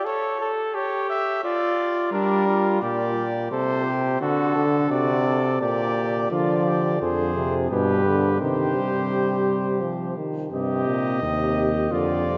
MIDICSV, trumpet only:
0, 0, Header, 1, 2, 480
1, 0, Start_track
1, 0, Key_signature, -2, "minor"
1, 0, Tempo, 692042
1, 41, Time_signature, 3, 2, 24, 8
1, 2921, Tempo, 700117
1, 4362, Key_signature, -3, "minor"
1, 8518, End_track
2, 0, Start_track
2, 0, Title_t, "Trumpet"
2, 0, Program_c, 0, 56
2, 46, Note_on_c, 0, 73, 73
2, 349, Note_off_c, 0, 73, 0
2, 524, Note_on_c, 0, 73, 71
2, 745, Note_off_c, 0, 73, 0
2, 762, Note_on_c, 0, 76, 83
2, 995, Note_off_c, 0, 76, 0
2, 1003, Note_on_c, 0, 74, 75
2, 1471, Note_off_c, 0, 74, 0
2, 1474, Note_on_c, 0, 70, 74
2, 1948, Note_off_c, 0, 70, 0
2, 1953, Note_on_c, 0, 74, 69
2, 2427, Note_off_c, 0, 74, 0
2, 2440, Note_on_c, 0, 72, 77
2, 2912, Note_off_c, 0, 72, 0
2, 2925, Note_on_c, 0, 69, 74
2, 3394, Note_off_c, 0, 69, 0
2, 3405, Note_on_c, 0, 74, 73
2, 3873, Note_off_c, 0, 74, 0
2, 3880, Note_on_c, 0, 74, 73
2, 4352, Note_off_c, 0, 74, 0
2, 4364, Note_on_c, 0, 74, 63
2, 4815, Note_off_c, 0, 74, 0
2, 4849, Note_on_c, 0, 72, 63
2, 5211, Note_off_c, 0, 72, 0
2, 5328, Note_on_c, 0, 71, 71
2, 5792, Note_off_c, 0, 71, 0
2, 5800, Note_on_c, 0, 72, 69
2, 6982, Note_off_c, 0, 72, 0
2, 7257, Note_on_c, 0, 75, 72
2, 8183, Note_off_c, 0, 75, 0
2, 8211, Note_on_c, 0, 74, 71
2, 8518, Note_off_c, 0, 74, 0
2, 8518, End_track
0, 0, End_of_file